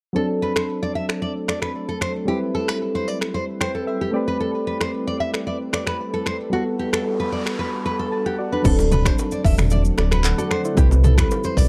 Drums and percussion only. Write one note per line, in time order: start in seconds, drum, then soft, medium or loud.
0.56 finger snap medium
0.56 cross-stick loud
1.09 finger snap medium
1.09 cross-stick medium
1.48 finger snap medium
1.48 cross-stick medium
1.62 finger snap medium
1.62 cross-stick medium
2.01 finger snap medium
2.01 cross-stick medium
2.68 finger snap medium
2.68 cross-stick loud
3.21 finger snap medium
3.21 cross-stick medium
3.61 finger snap medium
3.61 cross-stick medium
4.81 finger snap medium
4.81 cross-stick loud
5.34 finger snap medium
5.34 cross-stick medium
5.73 finger snap medium
5.73 cross-stick loud
5.87 finger snap medium
5.87 cross-stick medium
6.26 finger snap medium
6.26 cross-stick medium
6.93 finger snap medium
6.93 cross-stick loud
7.46 finger snap medium
7.46 cross-stick medium
8.64 kick loud
8.64 crash medium
8.64 low conga medium
8.64 shaker medium
8.79 low bongo medium
8.79 shaker medium
8.91 mid tom medium
8.91 low conga medium
8.91 shaker medium
9.05 finger snap medium
9.05 kick medium
9.05 cross-stick loud
9.05 low bongo medium
9.05 shaker medium
9.19 high bongo medium
9.19 shaker medium
9.31 shaker medium
9.45 kick medium
9.45 open hi-hat medium
9.45 high bongo medium
9.45 shaker medium
9.58 finger snap medium
9.58 cross-stick medium
9.58 mid tom medium
9.58 shaker soft
9.70 low conga medium
9.70 shaker medium
9.85 shaker medium
9.98 finger snap medium
9.98 cross-stick loud
9.98 low bongo medium
10.11 finger snap medium
10.11 cross-stick medium
10.11 shaker medium
10.24 clap medium
10.24 high bongo medium
10.24 shaker medium
10.39 shaker medium
10.51 finger snap medium
10.51 cross-stick medium
10.65 shaker medium
10.77 kick loud
10.77 low conga medium
10.77 shaker medium
10.91 low bongo medium
10.91 shaker medium
11.04 mid tom medium
11.04 low conga medium
11.04 shaker medium
11.18 finger snap loud
11.18 kick loud
11.18 cross-stick loud
11.18 low bongo medium
11.18 shaker medium
11.31 high bongo medium
11.31 shaker medium
11.44 shaker medium
11.57 kick medium
11.57 open hi-hat medium
11.57 high bongo medium
11.57 shaker medium